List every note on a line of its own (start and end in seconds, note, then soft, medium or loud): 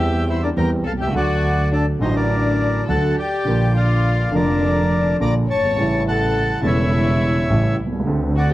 0.00 0.52 E2 medium
0.00 0.52 E3 medium
0.00 0.52 G3 medium
0.00 0.52 C4 medium
0.00 0.24 G4 medium
0.00 0.53 G4 medium
0.00 0.24 E5 medium
0.00 0.30 G5 medium
0.29 0.41 E4 medium
0.29 0.42 C5 soft
0.29 0.43 E5 medium
0.43 0.49 D4 soft
0.43 0.50 A#4 soft
0.43 0.49 D5 medium
0.56 0.80 E2 medium
0.56 0.81 E2 medium
0.56 0.81 E3 medium
0.56 0.80 G3 medium
0.56 0.81 C4 medium
0.56 0.81 G4 medium
0.56 0.69 A#4 medium
0.56 0.70 G5 soft
0.56 0.70 A#5 medium
0.85 1.13 C2 soft
0.85 0.91 A4 medium
0.85 0.93 F5 soft
0.85 0.92 A5 medium
0.93 1.00 B1 soft
0.99 1.07 C2 soft
0.99 1.12 G4 medium
0.99 1.14 E5 soft
0.99 1.14 G5 medium
1.07 1.14 C#2 medium
1.12 1.96 D2 medium
1.12 1.97 D2 medium
1.12 1.97 D3 medium
1.12 1.96 F#3 medium
1.12 1.97 A3 medium
1.12 1.67 F#4 medium
1.12 1.69 F#5 medium
1.16 1.98 F#4 medium
1.16 1.69 D5 medium
1.71 1.85 D4 medium
1.71 1.86 A4 medium
1.71 1.86 D5 medium
1.99 2.83 A1 medium
1.99 2.84 A1 medium
1.99 2.84 A2 medium
1.99 2.83 D3 medium
1.99 2.84 F#3 medium
1.99 2.14 D#4 medium
1.99 2.15 C5 soft
1.99 2.16 D#5 medium
2.04 2.85 F#4 medium
2.15 2.84 D4 medium
2.15 2.84 A#4 medium
2.15 2.84 D5 medium
2.88 3.12 D2 medium
2.88 3.13 D2 medium
2.88 3.13 D3 medium
2.88 3.13 F#3 soft
2.88 3.13 A3 soft
2.88 3.13 F#4 medium
2.88 3.15 A4 medium
2.88 3.16 F#5 medium
2.88 3.16 A5 medium
3.18 3.72 G4 medium
3.18 3.72 D5 medium
3.18 3.78 G5 medium
3.45 4.29 A#1 medium
3.45 4.29 A#2 medium
3.45 4.28 D3 medium
3.45 4.29 F3 medium
3.45 4.29 A#3 medium
3.49 4.30 F4 medium
3.76 4.29 F4 medium
3.76 4.30 D5 medium
3.76 4.36 F5 medium
4.31 5.16 F1 medium
4.31 5.15 F2 medium
4.31 5.15 D3 medium
4.31 5.15 F3 medium
4.31 5.16 A#3 medium
4.31 5.16 D4 medium
4.31 5.17 A#4 medium
4.35 5.17 F4 medium
4.35 5.17 D5 medium
5.20 5.44 A#1 medium
5.20 5.44 A#2 medium
5.20 5.44 D3 medium
5.20 5.44 F3 medium
5.20 5.44 A#3 soft
5.20 5.44 F4 medium
5.20 5.34 D5 medium
5.20 5.34 A#5 medium
5.20 5.34 D6 medium
5.48 5.76 G1 medium
5.48 6.03 C#5 medium
5.48 6.03 A5 medium
5.48 6.03 C#6 medium
5.56 5.63 F#1 soft
5.64 5.71 G1 medium
5.71 5.78 G#1 medium
5.76 6.59 A1 medium
5.76 6.60 A1 medium
5.76 6.60 A2 medium
5.76 6.59 C#3 medium
5.76 6.60 G3 medium
5.76 6.60 A3 medium
5.80 6.61 E4 medium
6.08 6.61 A4 medium
6.08 6.61 F#5 medium
6.08 6.67 A5 medium
6.61 7.45 E1 medium
6.61 7.46 E1 medium
6.61 7.45 E2 medium
6.61 7.44 C#3 medium
6.61 7.45 G3 medium
6.61 7.46 A3 medium
6.65 7.75 E4 medium
6.65 7.46 E4 medium
6.65 7.76 C#5 medium
6.65 7.76 E5 medium
7.50 7.74 A1 medium
7.50 7.74 A2 medium
7.50 7.74 C#3 medium
7.50 7.74 G3 medium
7.50 7.74 A3 medium
7.50 7.74 E4 medium
7.78 8.07 C2 medium
7.86 7.93 B1 soft
7.92 8.00 C2 medium
7.99 8.07 C#2 medium
8.05 8.53 D2 medium
8.05 8.07 D3 medium
8.05 8.53 D3 medium
8.05 8.53 A3 medium
8.05 8.53 C4 medium
8.09 8.53 A4 medium
8.36 8.49 F#4 medium
8.36 8.51 D5 medium
8.36 8.50 F#5 medium
8.50 8.53 G4 medium